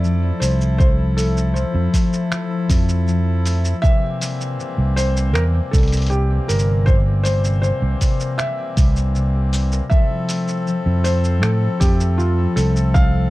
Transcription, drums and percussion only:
0.04 shaker soft
0.42 open hi-hat medium
0.42 shaker medium
0.61 shaker soft
0.80 kick loud
0.80 shaker soft
1.18 open hi-hat medium
1.18 shaker medium
1.37 shaker soft
1.56 shaker soft
1.94 kick medium
1.94 open hi-hat medium
1.94 shaker medium
2.13 shaker soft
2.32 finger snap medium
2.32 shaker soft
2.70 kick loud
2.70 open hi-hat loud
2.70 shaker medium
2.89 shaker soft
3.08 shaker soft
3.46 open hi-hat medium
3.46 shaker medium
3.65 shaker soft
3.84 kick loud
3.84 shaker soft
4.21 open hi-hat medium
4.21 shaker medium
4.41 shaker soft
4.60 shaker soft
4.97 open hi-hat medium
4.97 shaker medium
5.17 shaker soft
5.35 finger snap medium
5.35 shaker soft
5.73 kick loud
5.73 open hi-hat soft
5.73 shaker medium
5.78 open hi-hat soft
5.83 open hi-hat medium
5.88 open hi-hat medium
5.92 open hi-hat medium
5.92 shaker soft
5.97 open hi-hat medium
6.02 open hi-hat medium
6.07 open hi-hat medium
6.12 shaker soft
6.49 open hi-hat medium
6.49 shaker medium
6.59 shaker soft
6.87 kick loud
6.87 shaker soft
7.25 open hi-hat medium
7.25 shaker medium
7.44 shaker soft
7.64 shaker soft
8.01 kick medium
8.01 open hi-hat medium
8.01 shaker medium
8.20 shaker soft
8.39 finger snap medium
8.39 shaker soft
8.77 kick loud
8.77 open hi-hat medium
8.77 shaker medium
8.96 shaker soft
9.15 shaker soft
9.53 open hi-hat medium
9.53 shaker medium
9.72 shaker soft
9.91 kick loud
9.91 shaker soft
10.29 open hi-hat medium
10.29 shaker medium
10.48 shaker soft
10.67 shaker soft
11.05 open hi-hat medium
11.05 shaker medium
11.24 shaker soft
11.43 finger snap medium
11.43 shaker soft
11.81 kick loud
11.81 open hi-hat medium
11.81 shaker medium
12.00 shaker soft
12.19 shaker soft
12.57 open hi-hat medium
12.57 shaker medium
12.76 shaker soft
12.95 kick loud
12.95 shaker soft

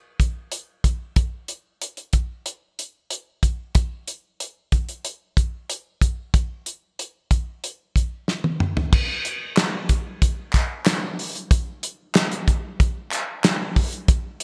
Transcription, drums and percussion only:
0.20 kick medium
0.20 closed hi-hat medium
0.52 closed hi-hat medium
0.84 kick medium
0.84 closed hi-hat medium
1.16 kick medium
1.16 closed hi-hat medium
1.48 closed hi-hat medium
1.82 closed hi-hat medium
1.97 closed hi-hat soft
2.13 kick medium
2.13 closed hi-hat medium
2.46 closed hi-hat medium
2.79 closed hi-hat medium
3.10 closed hi-hat medium
3.43 kick medium
3.43 closed hi-hat medium
3.75 kick loud
3.75 closed hi-hat medium
4.08 closed hi-hat medium
4.40 closed hi-hat medium
4.72 kick medium
4.72 closed hi-hat medium
4.89 closed hi-hat soft
5.05 closed hi-hat medium
5.37 kick medium
5.37 closed hi-hat medium
5.70 closed hi-hat medium
6.01 kick medium
6.01 closed hi-hat medium
6.34 kick medium
6.34 closed hi-hat medium
6.66 closed hi-hat medium
6.99 closed hi-hat medium
7.31 kick medium
7.31 closed hi-hat medium
7.64 closed hi-hat medium
7.96 kick medium
7.96 closed hi-hat medium
8.28 snare soft
8.44 high tom medium
8.60 mid tom medium
8.77 floor tom medium
8.93 kick loud
8.93 crash medium
9.25 closed hi-hat medium
9.57 snare loud
9.57 clap medium
9.57 closed hi-hat medium
9.89 kick medium
9.89 closed hi-hat medium
10.22 kick medium
10.22 closed hi-hat medium
10.53 kick medium
10.53 clap medium
10.53 closed hi-hat medium
10.86 snare loud
10.86 clap medium
10.86 closed hi-hat medium
11.19 open hi-hat medium
11.35 closed hi-hat soft
11.51 kick loud
11.51 closed hi-hat medium
11.83 closed hi-hat medium
12.15 snare loud
12.15 clap medium
12.15 closed hi-hat medium
12.32 closed hi-hat soft
12.48 kick medium
12.48 closed hi-hat medium
12.80 kick medium
12.80 closed hi-hat medium
13.12 clap medium
13.12 closed hi-hat medium
13.44 snare loud
13.44 clap medium
13.44 closed hi-hat medium
13.76 kick medium
13.76 open hi-hat medium
13.93 closed hi-hat soft
14.08 kick loud
14.08 closed hi-hat medium
14.40 closed hi-hat medium

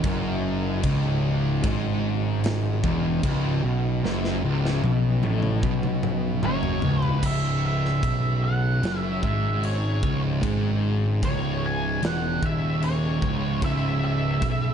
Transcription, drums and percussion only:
0.04 kick loud
0.04 crash medium
0.83 kick loud
0.83 crash medium
1.63 kick loud
1.63 crash medium
2.44 snare loud
2.44 crash medium
2.84 kick loud
3.23 kick loud
3.23 crash medium
4.05 snare medium
4.25 snare medium
4.66 snare medium
4.84 high tom medium
5.23 high tom medium
5.43 mid tom medium
5.63 kick loud
5.83 mid tom medium
6.03 mid tom loud
6.43 mid tom loud
6.63 floor tom medium
6.82 floor tom loud
7.02 floor tom medium
7.23 kick loud
7.23 crash loud
7.23 crash medium
7.85 snare soft
8.03 kick loud
8.03 crash medium
8.83 snare loud
8.83 crash medium
9.23 kick loud
9.63 crash medium
10.03 kick loud
10.43 kick loud
10.43 crash medium
11.23 kick loud
11.23 crash medium
12.03 snare loud
12.03 crash medium
12.43 kick loud
12.82 crash medium
13.22 kick loud
13.62 kick loud
13.62 crash medium
14.42 kick loud
14.42 crash medium

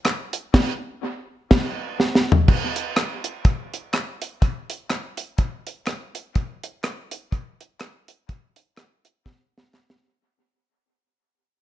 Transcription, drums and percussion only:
0.05 cross-stick loud
0.05 clap medium
0.05 closed hi-hat medium
0.33 closed hi-hat medium
0.54 kick loud
0.54 snare loud
0.54 crash medium
1.51 kick loud
1.51 snare loud
1.51 crash medium
2.00 snare medium
2.15 snare medium
2.32 floor tom loud
2.48 kick loud
2.48 crash loud
2.76 closed hi-hat medium
2.97 cross-stick loud
2.97 clap medium
2.97 closed hi-hat medium
3.24 closed hi-hat loud
3.45 kick loud
3.45 closed hi-hat medium
3.74 closed hi-hat medium
3.93 cross-stick loud
3.93 clap loud
3.93 closed hi-hat medium
4.22 closed hi-hat medium
4.42 kick loud
4.42 closed hi-hat medium
4.70 closed hi-hat loud
4.90 cross-stick loud
4.90 clap medium
4.90 closed hi-hat medium
5.17 closed hi-hat loud
5.38 kick loud
5.38 closed hi-hat medium
5.67 closed hi-hat medium
5.86 cross-stick loud
5.86 clap medium
5.86 closed hi-hat medium
6.15 closed hi-hat medium
6.35 kick loud
6.35 closed hi-hat medium
6.63 closed hi-hat loud
6.84 cross-stick loud
6.84 clap loud
6.84 closed hi-hat medium
7.11 closed hi-hat loud
7.32 kick loud
7.32 closed hi-hat medium
7.61 closed hi-hat medium
7.80 cross-stick loud
7.80 clap medium
7.80 closed hi-hat medium
8.08 closed hi-hat medium
8.29 kick loud
8.29 closed hi-hat medium
8.56 closed hi-hat medium
8.77 cross-stick loud
8.77 clap medium
8.77 closed hi-hat medium
9.05 closed hi-hat loud
9.26 kick loud
9.26 snare medium
9.58 snare medium
9.74 snare medium
9.74 clap medium
9.90 snare loud

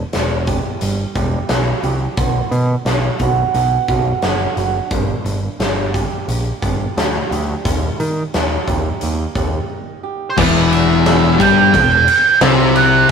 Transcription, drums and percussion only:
0.13 snare medium
0.13 closed hi-hat medium
0.47 kick medium
0.47 closed hi-hat medium
0.81 closed hi-hat medium
1.15 kick medium
1.15 closed hi-hat medium
1.49 snare loud
1.49 closed hi-hat medium
1.83 closed hi-hat medium
2.17 kick loud
2.17 closed hi-hat medium
2.52 closed hi-hat medium
2.86 snare medium
2.86 closed hi-hat medium
3.19 kick medium
3.19 closed hi-hat medium
3.54 closed hi-hat medium
3.88 kick medium
3.88 closed hi-hat medium
4.22 snare medium
4.22 closed hi-hat medium
4.57 closed hi-hat soft
4.91 kick loud
4.91 closed hi-hat medium
5.26 closed hi-hat medium
5.60 snare medium
5.60 closed hi-hat medium
5.94 kick medium
5.94 closed hi-hat medium
6.29 closed hi-hat medium
6.62 kick medium
6.62 closed hi-hat medium
6.98 snare loud
6.98 closed hi-hat medium
7.32 closed hi-hat medium
7.65 kick loud
7.65 closed hi-hat medium
8.00 closed hi-hat medium
8.34 snare medium
8.34 closed hi-hat medium
8.68 kick medium
8.68 closed hi-hat medium
9.01 closed hi-hat medium
9.35 kick medium
9.35 closed hi-hat medium
10.38 kick loud
10.38 crash loud
10.73 ride medium
10.90 snare soft
11.06 snare loud
11.06 ride loud
11.24 snare soft
11.40 kick loud
11.40 ride medium
11.74 kick loud
11.74 ride loud
12.08 ride medium
12.41 snare loud
12.41 ride loud
12.76 ride medium

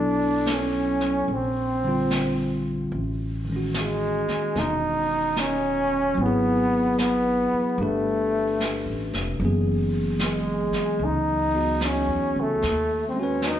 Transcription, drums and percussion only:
0.46 snare soft
0.46 hi-hat pedal medium
1.00 snare soft
1.28 brush sweep soft
2.11 snare soft
2.11 hi-hat pedal soft
2.93 brush sweep soft
3.74 snare soft
3.74 hi-hat pedal medium
4.28 snare soft
4.56 brush sweep soft
4.56 snare soft
5.36 snare soft
5.36 hi-hat pedal soft
6.18 brush sweep soft
6.98 snare soft
6.98 hi-hat pedal soft
7.79 brush sweep soft
8.60 snare soft
8.60 hi-hat pedal soft
9.13 snare soft
9.40 brush sweep soft
10.19 snare soft
10.19 hi-hat pedal medium
10.73 snare soft
11.00 brush sweep soft
11.81 snare soft
11.81 hi-hat pedal soft
12.62 brush sweep soft
12.62 snare soft
13.42 snare soft
13.42 hi-hat pedal soft

